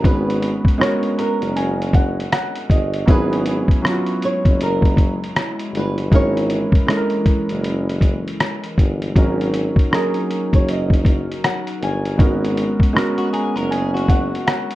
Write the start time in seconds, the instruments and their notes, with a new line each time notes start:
0.02 tuba G#1, felt piano G#3 B3 C#4 F#4 B4, nylon-string guitar B4, kick, closed hi-hat
0.30 closed hi-hat
0.42 closed hi-hat
0.65 kick, closed hi-hat
0.78 felt piano G#3 B3 C#4 F#4 A#4, nylon-string guitar C#5, cross-stick
0.83 closed hi-hat
1.03 closed hi-hat
1.18 nylon-string guitar A#4, felt piano A#5, closed hi-hat
1.42 tuba F#1, closed hi-hat
1.56 nylon-string guitar F#4, felt piano G#5, closed hi-hat
1.82 closed hi-hat
1.93 felt piano F#5, kick, closed hi-hat
2.20 closed hi-hat
2.32 felt piano F#5, cross-stick, closed hi-hat
2.56 closed hi-hat
2.70 tuba G1, felt piano D#5, kick, closed hi-hat
2.94 closed hi-hat
3.06 tuba G#1, felt piano F#3 B3 C#4 E4 G#4, analog synth pad F#3 G#3 E4, kick, closed hi-hat
3.10 nylon-string guitar B4
3.33 closed hi-hat
3.46 closed hi-hat
3.68 kick, closed hi-hat
3.82 felt piano F#3 B3 C#4 E4 F4, cross-stick
3.87 closed hi-hat
3.92 felt piano F#4
4.06 closed hi-hat
4.22 nylon-string guitar C#5, closed hi-hat
4.45 tuba F#1, kick, closed hi-hat
4.61 nylon-string guitar A#4, closed hi-hat
4.82 kick, closed hi-hat
4.97 kick, closed hi-hat
5.24 closed hi-hat
5.36 cross-stick, closed hi-hat
5.59 closed hi-hat
5.74 tuba G1, nylon-string guitar B4, closed hi-hat
5.98 closed hi-hat
6.11 tuba G#1, analog synth pad E3 A#4, felt piano G#3 A#3 C#4 E4 A#4, kick, closed hi-hat
6.15 nylon-string guitar C#5
6.37 closed hi-hat
6.50 closed hi-hat
6.72 kick, closed hi-hat
6.87 felt piano G#3 A#3 C#4 E4 A4, cross-stick, closed hi-hat
6.97 felt piano A#4
7.10 closed hi-hat
7.26 kick, closed hi-hat
7.49 tuba F#1, closed hi-hat
7.64 closed hi-hat
7.89 closed hi-hat
8.01 kick, closed hi-hat
8.28 closed hi-hat
8.40 cross-stick, closed hi-hat
8.64 closed hi-hat
8.78 tuba G1, kick, closed hi-hat
9.02 closed hi-hat
9.15 tuba G#1, felt piano F#3 A#3 C#4 D#4 A#4, analog synth pad F#3 D#4 F#4, kick, closed hi-hat
9.41 closed hi-hat
9.54 closed hi-hat
9.76 kick, closed hi-hat
9.91 felt piano F#3 A#3 C#4 D#4 G#4, nylon-string guitar A#4, cross-stick, closed hi-hat
10.14 closed hi-hat
10.31 closed hi-hat
10.53 tuba F#1, nylon-string guitar C#5, kick, closed hi-hat
10.69 nylon-string guitar D#5, closed hi-hat
10.90 kick, closed hi-hat
11.05 kick, closed hi-hat
11.32 closed hi-hat
11.44 nylon-string guitar F#5, cross-stick, closed hi-hat
11.67 closed hi-hat
11.81 tuba G1, nylon-string guitar G#5, closed hi-hat
12.05 closed hi-hat
12.17 tuba G#1, felt piano G#3 B3 C#4 F#4 A#4, analog synth pad G#3 B3, kick, closed hi-hat
12.45 closed hi-hat
12.57 closed hi-hat
12.80 kick, closed hi-hat
12.93 felt piano G#3 B3 C#4 F#4 A#4, cross-stick
12.98 closed hi-hat
13.18 clean electric guitar F#4, closed hi-hat
13.33 clean electric guitar G#4, felt piano A#5, closed hi-hat
13.56 tuba F#1, clean electric guitar A#4, closed hi-hat
13.71 clean electric guitar G#4, felt piano G#5, closed hi-hat
13.94 clean electric guitar F#4, closed hi-hat
14.08 felt piano F#5, kick, closed hi-hat
14.35 closed hi-hat
14.47 felt piano F#5, cross-stick, closed hi-hat
14.71 closed hi-hat